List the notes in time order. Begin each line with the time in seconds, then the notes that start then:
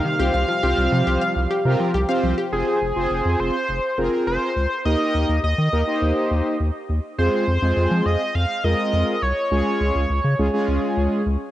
Already playing: C3 G3 A#3 D#4 G4 F5
0.05 D#3
0.19 C2 F3 G3 C4 F4 G4 C5
0.34 C2 F5
0.48 F3
0.63 C2 C4 F4 G4 C5
0.78 C2
0.92 C3 F3
1.07 C2 G4
1.21 F5
1.36 C2
1.50 G4
1.65 C3 C4 F4 G4 A#4
1.80 F3
1.94 C2 G4
2.09 C4 F4 G4 C5 F5
2.23 C2 F3
2.38 G4
2.52 F1 C4 F4 G#4 C5
2.82 F1
2.96 F1 C4 F4 G#4 C5
3.11 F1
3.25 F2
3.40 F1 C5
3.69 F1
3.98 F1 C4 F4 G#4 A#4
4.27 F1 C5
4.56 C#2
4.85 D#2 A#3 D#4 G4 A#4 D#5
5.15 D#2
5.29 D#2
5.44 D#2 D#5
5.58 D#3
5.73 D#2 A#3 D#4 G4 A#4
5.87 A#3 D#4 G4 C5
6.02 D#2
6.31 D#2
6.60 D#2
6.89 D#2
7.18 F2 G#3 C4 F4 G#4 C5
7.47 F2
7.62 F2 G#3 C4 F4 G#4
7.77 F2
7.91 F3
8.06 F2 D#5
8.35 F2 F5
8.64 F2 G#3 C4 F4 A#4 D#5
8.93 F2
9.22 C2 C#5
9.51 C#2 G#3 C#4 F4 G#4
9.81 C#2
9.95 C#2
10.10 C#2
10.24 C#3
10.39 C#2 G#3 C#4 F4 G#4
10.53 G#3 C#4 F4 G#4
10.68 C#2
10.97 C#2
11.26 C#2